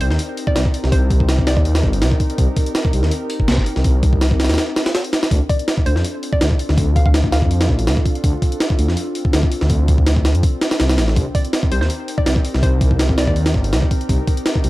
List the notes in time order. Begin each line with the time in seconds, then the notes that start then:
Already playing: C4 D#4 G4 A#4
0.01 C2 C5, open hi-hat
0.10 D#2 C5, snare
0.19 open hi-hat
0.37 open hi-hat
0.47 D5, kick
0.56 C2 D5, snare, open hi-hat
0.65 kick
0.74 open hi-hat
0.84 C2, snare
0.92 C5, kick, open hi-hat
1.10 kick, open hi-hat
1.20 kick
1.29 snare, open hi-hat
1.38 kick
1.47 C2 D5, snare, open hi-hat
1.57 D#2 D5, kick
1.65 open hi-hat
1.75 snare, open hi-hat
1.83 G1, kick
1.93 open hi-hat
2.02 C2, snare, open hi-hat
2.12 kick
2.20 kick, open hi-hat
2.30 closed hi-hat
2.38 C2, kick, open hi-hat
2.56 kick, open hi-hat
2.66 closed hi-hat
2.75 snare, open hi-hat
2.85 kick
2.93 C2, open hi-hat
3.03 D#2, snare
3.11 open hi-hat
3.30 open hi-hat
3.40 kick
3.48 C2, snare, open hi-hat
3.58 kick
3.66 open hi-hat
3.76 C2, snare
3.84 kick, open hi-hat
4.03 kick, open hi-hat
4.13 kick
4.21 snare, open hi-hat
4.31 kick
4.40 C2, snare, open hi-hat
4.45 snare, open hi-hat
4.49 D#2, snare, open hi-hat
4.54 snare, open hi-hat
4.58 snare, open hi-hat
4.76 snare, open hi-hat
4.86 snare, open hi-hat
4.95 snare, open hi-hat
5.04 open hi-hat
5.13 snare, open hi-hat
5.23 snare, open hi-hat
5.31 D2 C4 D4 F4 A4, kick, open hi-hat
5.49 D5, kick, open hi-hat
5.59 closed hi-hat
5.68 snare, open hi-hat
5.78 kick
5.86 D2 C5, open hi-hat
5.96 F2 C5, snare
6.04 open hi-hat
6.23 open hi-hat
6.32 D5, kick
6.41 D2, snare, open hi-hat
6.51 kick
6.59 open hi-hat
6.69 D2, snare
6.78 kick, open hi-hat
6.96 F5, kick, open hi-hat
7.06 F5, kick
7.14 snare, open hi-hat
7.24 kick
7.32 D2 F5, snare, open hi-hat
7.42 F2, kick
7.51 open hi-hat
7.61 snare, open hi-hat
7.69 A1, kick
7.79 open hi-hat
7.87 D2, snare, open hi-hat
7.97 kick
8.06 kick, open hi-hat
8.15 closed hi-hat
8.24 D2, kick, open hi-hat
8.42 kick, open hi-hat
8.52 closed hi-hat
8.60 snare, open hi-hat
8.70 kick
8.78 D2, open hi-hat
8.88 F2, snare
8.97 open hi-hat
9.15 open hi-hat
9.25 kick
9.33 D2, snare, open hi-hat
9.43 kick
9.52 open hi-hat
9.61 D2, snare
9.70 kick, open hi-hat
9.88 kick, open hi-hat
9.98 kick
10.06 snare, open hi-hat
10.16 kick
10.25 D2, snare, open hi-hat
10.35 F2, closed hi-hat
10.43 kick, open hi-hat
10.61 snare, open hi-hat
10.71 snare, open hi-hat
10.80 C2, snare, open hi-hat
10.89 snare, open hi-hat
10.98 A1, snare, open hi-hat
11.08 snare
11.16 C2 D#4 G4 A#4, kick, open hi-hat
11.35 D5, kick, open hi-hat
11.45 closed hi-hat
11.53 snare, open hi-hat
11.63 kick
11.71 C2 C5, open hi-hat
11.81 D#2 C5, snare
11.90 open hi-hat
12.08 open hi-hat
12.18 D5, kick
12.26 C2 D5, snare, open hi-hat
12.36 kick
12.45 open hi-hat
12.54 C2, snare
12.63 C5, kick, open hi-hat
12.81 kick, open hi-hat
12.91 kick
12.99 snare, open hi-hat
13.09 kick
13.18 C2 D5, snare, open hi-hat
13.27 D#2 D5, kick
13.36 open hi-hat
13.46 snare, open hi-hat
13.54 G1, kick
13.64 open hi-hat
13.73 C2, snare, open hi-hat
13.82 kick
13.91 kick, open hi-hat
14.01 closed hi-hat
14.09 C2, kick, open hi-hat
14.27 kick, open hi-hat
14.37 closed hi-hat
14.46 snare, open hi-hat
14.56 kick
14.64 C2, open hi-hat